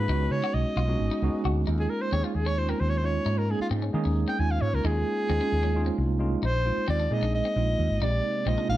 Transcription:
Already playing: soprano saxophone B4
0.08 fretless electric bass C#2, tine electric piano G#3 B3 C#4 D#4 F#4, clean electric guitar D#4
0.31 fretless electric bass C#3, soprano saxophone C#5
0.44 clean electric guitar F#4
0.54 fretless electric bass B1, soprano saxophone D#5
0.76 fretless electric bass B1, clean electric guitar F4
0.88 tine electric piano G#3 B3 C#4 D#4 F#4
0.99 fretless electric bass G#1
1.11 clean electric guitar D#4
1.22 fretless electric bass C#2, tine electric piano G#3 B3 C#4 D#4 F#4
1.45 fretless electric bass D2, clean electric guitar F#4
1.67 fretless electric bass D#2, tine electric piano G#3 A#3 C#4 D#4 F4, clean electric guitar D#4
1.79 soprano saxophone G#4
1.89 soprano saxophone A#4
2.01 soprano saxophone C5
2.12 fretless electric bass D#2, tine electric piano G#3 A#3 C#4 D#4 G#4, clean electric guitar C4, soprano saxophone C#5
2.24 clean electric guitar C#4, soprano saxophone F4
2.35 fretless electric bass D#2, soprano saxophone G#4
2.46 clean electric guitar C#4, soprano saxophone C#5
2.57 tine electric piano G#3 A#3 C#4 D#4 F4, soprano saxophone C5
2.69 clean electric guitar C4, soprano saxophone A#4
2.80 fretless electric bass D#2, soprano saxophone C5
2.89 soprano saxophone C#5
2.97 soprano saxophone C5
3.03 tine electric piano G#3 A#3 C#4 D#4 F4, soprano saxophone C#5
3.26 fretless electric bass G#2, clean electric guitar D#4
3.38 soprano saxophone A#4
3.48 tine electric piano G#3 A#3 C#4 D#4 G#4, soprano saxophone G#4
3.60 soprano saxophone F4, muted fretless electric bass stroke
3.71 fretless electric bass G#2, clean electric guitar C4
3.82 clean electric guitar C#4
3.93 fretless electric bass D#3, tine electric piano G#3 A#3 C#4 D#4 G#4
4.05 fretless electric bass D#2, clean electric guitar C#4
4.28 clean electric guitar C4, soprano saxophone G5
4.39 fretless electric bass D#2, tine electric piano G#3 A#3 C#4 D#4 F4, soprano saxophone G#5
4.51 soprano saxophone F5
4.61 fretless electric bass G#2, soprano saxophone C#5
4.73 fretless electric bass C#2, soprano saxophone A#4
4.84 fretless electric bass D#2, tine electric piano G#3 A#3 C#4 D#4 F4, clean electric guitar D#4, soprano saxophone G#4
5.29 fretless electric bass D#2, tine electric piano G#3 A#3 C#4 D#4 F4, clean electric guitar C4
5.41 clean electric guitar C#4
5.52 fretless electric bass D#2
5.63 clean electric guitar C#4
5.74 tine electric piano G#3 A#3 C#4 D#4 F4
5.86 clean electric guitar C4
5.98 fretless electric bass C2
6.19 tine electric piano G#3 A#3 C#4 D#4 F4
6.43 fretless electric bass A#1, clean electric guitar D#4, soprano saxophone C5
6.65 tine electric piano G#3 A#3 C4 D#4 F4
6.77 muted fretless electric bass stroke
6.88 fretless electric bass D#2, clean electric guitar C4, soprano saxophone D5
7.00 clean electric guitar D4
7.10 fretless electric bass A#2, tine electric piano G#3 A#3 C4 D#4 G#4, soprano saxophone D#5
7.22 fretless electric bass A#1, clean electric guitar D4
7.35 soprano saxophone D#5
7.45 clean electric guitar C4
7.56 fretless electric bass A#1, tine electric piano G#3 A#3 C4 D#4 F4
7.79 fretless electric bass D#2
7.90 fretless electric bass G#1
8.01 fretless electric bass A#1, analog synth pad C3 G#3 A#3 D#4, tine electric piano G#3 A#3 C4 D#4 G4, clean electric guitar D#4, soprano saxophone D5
8.46 fretless electric bass A#1, tine electric piano G#3 A#3 C4 D#4 F4, clean electric guitar C4, soprano saxophone D#5
8.58 clean electric guitar D4
8.69 fretless electric bass A#1, soprano saxophone F5

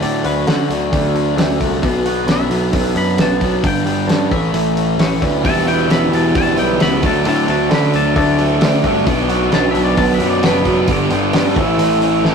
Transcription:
0.02 picked electric bass A2, distorted electric guitar D3 F#3 A3 D4, clean electric guitar D5, open hi-hat
0.24 picked electric bass D2, distorted electric guitar F#3 A3 D4, clean electric guitar F#4 B4, open hi-hat
0.47 picked electric bass D3, distorted electric guitar D3 F#3 A3 D4, clean electric guitar F#4, snare, open hi-hat
0.69 picked electric bass D2, clean electric guitar D3, distorted electric guitar F#3 A3 D4, open hi-hat
0.92 picked electric bass D2, distorted electric guitar D3 F#3 A3 D4, kick, open hi-hat
1.15 clean electric guitar D4, open hi-hat
1.37 picked electric bass D2, distorted electric guitar D3 F#3 A3 D4, snare, open hi-hat
1.60 picked electric bass C2, clean electric guitar D3, distorted electric guitar F#3 A3 D4, kick, open hi-hat
1.82 picked electric bass B1, distorted electric guitar B2 F#3 B3 D4, kick, open hi-hat
2.05 distorted electric guitar F#3 B3 D4, clean electric guitar F#4, open hi-hat
2.26 picked electric bass B1, distorted electric guitar B2 F#3 B3 D4, snare, open hi-hat
2.31 clean electric guitar E5
2.50 picked electric bass B1, distorted electric guitar F#3 B3 D4, open hi-hat
2.73 picked electric bass B1, distorted electric guitar B2 F#3 B3 D4, kick, open hi-hat
2.95 picked electric bass F#2, clean electric guitar D4 B5, open hi-hat
3.17 picked electric bass B1, distorted electric guitar B2 F#3 B3 D4, snare, open hi-hat
3.21 clean electric guitar A5
3.40 distorted electric guitar F#3 B3 D4, kick, open hi-hat
3.63 picked electric bass G1, distorted electric guitar G2 D3 G3 B3 D4, clean electric guitar G5, kick, open hi-hat
3.85 picked electric bass G1, distorted electric guitar G3 B3 D4, clean electric guitar G4, open hi-hat
4.08 picked electric bass G2, distorted electric guitar D3 G3 B3 D4, snare, open hi-hat
4.31 picked electric bass A1, distorted electric guitar A2 E3 A3 C#4 E4, clean electric guitar E5, kick, open hi-hat
4.53 picked electric bass A1, distorted electric guitar A2 E3 A3 C#4 E4, open hi-hat
4.76 clean electric guitar C#4, open hi-hat
4.98 picked electric bass A1, distorted electric guitar E3 A3 C#4 E4, clean electric guitar C#5, snare, open hi-hat
5.21 picked electric bass D2, clean electric guitar E3, distorted electric guitar A3 C#4 E4, kick, open hi-hat
5.44 picked electric bass E1, clean electric guitar E2 A5, distorted electric guitar E3 G3 B3 E4, kick, open hi-hat
5.66 distorted electric guitar G3 B3 E4, clean electric guitar F#4 G5, open hi-hat
5.89 picked electric bass E1, distorted electric guitar E3 G3 B3 E4, clean electric guitar B5, snare, open hi-hat
6.11 picked electric bass E1, clean electric guitar E3 A5, distorted electric guitar G3 B3 E4, open hi-hat
6.35 picked electric bass E1, distorted electric guitar E3 G3 B3 E4, clean electric guitar A5, kick, open hi-hat
6.55 picked electric bass B1, distorted electric guitar G3 B3 E4, clean electric guitar B3 G5, open hi-hat
6.80 picked electric bass C#2, distorted electric guitar E3 G3 B3 E4, clean electric guitar B5, snare, open hi-hat
7.03 picked electric bass D2, distorted electric guitar D3 F#3 A3 D4, clean electric guitar A5, kick, open hi-hat
7.25 picked electric bass A2, distorted electric guitar D3 F#3 A3 D4, clean electric guitar A5, open hi-hat
7.47 picked electric bass D2, distorted electric guitar F#3 A3 D4, clean electric guitar F#4 A5, open hi-hat
7.70 distorted electric guitar D3 F#3 A3 D4, picked electric bass D3, clean electric guitar B5, snare, open hi-hat
7.93 picked electric bass D2, clean electric guitar D3 A5, distorted electric guitar F#3 A3 D4, open hi-hat
8.15 picked electric bass D2, distorted electric guitar D3 F#3 A3 D4, clean electric guitar A5, kick, open hi-hat
8.38 distorted electric guitar F#3 A3 D4, clean electric guitar D4, open hi-hat
8.61 picked electric bass D2, distorted electric guitar D3 F#3 A3 D4, snare, open hi-hat
8.83 picked electric bass G2, clean electric guitar D3, distorted electric guitar F#3 A3 D4, kick, open hi-hat
9.06 picked electric bass B1, distorted electric guitar B2 F#3 B3 D4, kick, open hi-hat
9.28 distorted electric guitar F#3 B3 D4, clean electric guitar F#4, open hi-hat
9.50 picked electric bass B1, distorted electric guitar B2 F#3 B3 D4, snare, open hi-hat
9.55 clean electric guitar A5
9.71 picked electric bass B1, distorted electric guitar B3 D4, clean electric guitar E5, open hi-hat
9.76 distorted electric guitar F#3
9.84 clean electric guitar D5
9.97 picked electric bass B1, distorted electric guitar B2 F#3 B3 D4, clean electric guitar A5, kick, open hi-hat
10.14 clean electric guitar E5
10.19 picked electric bass F#2, distorted electric guitar F#3 B3 D4, clean electric guitar D4, open hi-hat
10.30 clean electric guitar D5
10.42 picked electric bass F#1, distorted electric guitar B2 F#3 B3 D4, clean electric guitar B4, snare, open hi-hat
10.65 distorted electric guitar F#3 B3 D4, kick, open hi-hat
10.87 picked electric bass G1, distorted electric guitar G2 D3 G3 B3 D4, kick, open hi-hat
11.10 picked electric bass G1, distorted electric guitar G3 B3 D4, clean electric guitar G4, open hi-hat
11.33 picked electric bass G2, distorted electric guitar G2 D3 G3 B3 D4, snare, open hi-hat
11.54 picked electric bass A1, distorted electric guitar A2 E3 A3 C#4 E4, kick, open hi-hat
11.78 picked electric bass A1, distorted electric guitar A2 E3 A3 C#4 E4, open hi-hat
12.01 clean electric guitar C#4, distorted electric guitar C#4 E4, open hi-hat
12.06 distorted electric guitar A3
12.22 picked electric bass A1, distorted electric guitar E3 A3 C#4 E4, snare

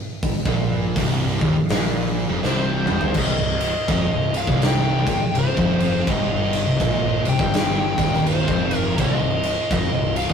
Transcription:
0.23 kick, open hi-hat
0.45 fingered electric bass A#1, distorted electric guitar A#2, kick
0.96 fingered electric bass C1, distorted electric guitar C2, kick, open hi-hat
1.41 fingered electric bass D#1, distorted electric guitar D#2, kick
1.69 fingered electric bass A#1, distorted electric guitar A#2, snare, open hi-hat
2.29 fingered electric bass F1, distorted electric guitar F2
2.43 fingered electric bass C1, distorted electric guitar C2, lead electric guitar C5, snare
2.87 fingered electric bass G1, distorted electric guitar G2, mid tom
3.01 floor tom
3.14 fingered electric bass C1, distorted electric guitar C2, kick, crash
3.19 lead electric guitar D#5
3.39 fingered electric bass C1, distorted electric guitar C2
3.61 ride
3.88 fingered electric bass F1, distorted electric guitar F2, lead electric guitar D#5, kick, ride
4.10 fingered electric bass C1, distorted electric guitar C2
4.34 lead electric guitar F5, ride
4.47 fingered electric bass C1, distorted electric guitar C2, kick
4.62 lead electric guitar G5, snare, ride
5.06 fingered electric bass A#1, distorted electric guitar A#2, kick, ride
5.21 muted fingered electric bass stroke, muted distorted electric guitar stroke
5.35 fingered electric bass C1, distorted electric guitar C2, lead electric guitar C5, ride
5.57 fingered electric bass F1, distorted electric guitar F2, kick
5.80 ride
6.07 fingered electric bass G1, distorted electric guitar G2, lead electric guitar D#5, kick, ride
6.53 ride
6.67 fingered electric bass C1, distorted electric guitar C2
6.80 fingered electric bass A#1, distorted electric guitar A#2, lead electric guitar D#5, kick, ride
7.25 fingered electric bass C1, distorted electric guitar C2, lead electric guitar G5, ride
7.39 fingered electric bass G1, distorted electric guitar G2, kick
7.54 snare, ride
7.98 fingered electric bass D#1, distorted electric guitar D#2, kick, ride
8.14 snare
8.26 lead electric guitar C5, ride
8.48 fingered electric bass F1, distorted electric guitar F2, kick
8.71 ride
8.77 lead electric guitar A#4
8.97 fingered electric bass C1, distorted electric guitar C2, lead electric guitar D#5, kick, ride
9.20 fingered electric bass C1, distorted electric guitar C2
9.43 ride
9.71 fingered electric bass F1, distorted electric guitar F2, lead electric guitar D#5, kick, ride
9.93 fingered electric bass C1, distorted electric guitar C2
10.16 lead electric guitar F5, ride
10.29 fingered electric bass C1, distorted electric guitar C2, kick

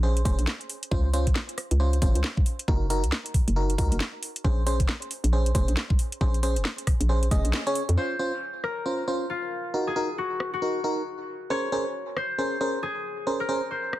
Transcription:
Already playing: fm bass A#1
0.03 fm electric piano C#4 G#4 C5
0.17 closed hi-hat
0.25 fm bass F1, fm electric piano C#4 G#4 C5, kick, cross-stick, open hi-hat
0.39 fm bass A#1, closed hi-hat
0.47 snare
0.61 closed hi-hat
0.69 open hi-hat
0.83 closed hi-hat
0.91 fm bass C#2, fm electric piano C#4 F4 C5, kick
1.13 fm electric piano C#4 F4 C5, open hi-hat
1.27 fm bass G#1, kick, closed hi-hat
1.36 snare
1.49 closed hi-hat
1.58 cross-stick, open hi-hat
1.71 fm bass C#2, closed hi-hat
1.80 fm electric piano C#4 F4 C5
1.93 closed hi-hat
2.02 fm bass G#1, fm electric piano C#4 F4 C5, kick, open hi-hat
2.15 fm bass C#2, closed hi-hat
2.24 snare
2.37 kick
2.46 open hi-hat
2.59 closed hi-hat
2.68 fm bass F#1, fm electric piano D#4 F#4 A#4, kick
2.90 fm electric piano D#4 F#4 A#4, open hi-hat
3.04 fm bass C#2, closed hi-hat
3.12 snare
3.26 closed hi-hat
3.34 kick, open hi-hat
3.48 fm bass F#1, closed hi-hat
3.56 fm electric piano D#4 F#4 A#4
3.70 closed hi-hat
3.78 fm bass C#2, fm electric piano D#4 F#4 A#4, kick, open hi-hat
3.92 fm bass F#1, closed hi-hat
4.00 snare
4.23 open hi-hat
4.36 closed hi-hat
4.44 fm bass A#1, fm electric piano C#4 G#4 C5, kick
4.66 fm electric piano C#4 G#4 C5, open hi-hat
4.80 fm bass F1, kick, closed hi-hat
4.89 snare
5.02 closed hi-hat
5.11 open hi-hat
5.24 fm bass A#1, closed hi-hat
5.33 fm electric piano C#4 G#4 C5
5.46 closed hi-hat
5.55 fm bass F1, fm electric piano C#4 G#4 C5, kick, open hi-hat
5.68 fm bass A#1, closed hi-hat
5.77 snare
5.90 kick
5.99 open hi-hat
6.12 closed hi-hat
6.21 fm bass A#1, fm electric piano C#4 G#4 C5, kick
6.34 closed hi-hat
6.43 fm electric piano C#4 G#4 C5, open hi-hat
6.56 fm bass F1, closed hi-hat
6.65 snare
6.78 closed hi-hat
6.87 kick, cross-stick, open hi-hat
7.00 fm bass A#1, closed hi-hat
7.09 fm electric piano C#4 G#4 C5
7.23 closed hi-hat
7.31 fm bass F1, fm electric piano C#4 G#4 D#5, kick, cross-stick, open hi-hat
7.45 fm bass A#1, closed hi-hat
7.53 snare
7.67 fm electric piano C#4 G#4 C#5, closed hi-hat
7.75 open hi-hat
7.89 fm bass F2, closed hi-hat
7.97 fm electric piano C#4 F4 C5, harp C5
8.19 fm electric piano C#4 F4 C5
8.64 harp A#4, cross-stick
8.86 fm electric piano C#4 F4 C5
9.08 fm electric piano C#4 F4 C5
9.30 harp F4
9.74 fm electric piano D#4 F#4 A#4
9.87 harp G#4
9.96 fm electric piano D#4 F#4 A#4
10.18 harp F#4
10.40 cross-stick
10.53 harp F#4
10.62 fm electric piano D#4 F#4 A#4
10.84 fm electric piano D#4 F#4 A#4
11.50 fm electric piano C#4 G#4 A#4 C5, harp C#5
11.72 fm electric piano C#4 G#4 A#4 C5
12.17 harp C5, cross-stick
12.38 fm electric piano C#4 G#4 A#4 C5
12.61 fm electric piano C#4 G#4 A#4 C5
12.83 harp G#4
13.27 fm electric piano C#4 G#4 A#4 C5
13.40 harp A#4
13.49 fm electric piano C#4 G#4 A#4 C5
13.71 harp C5
13.93 cross-stick

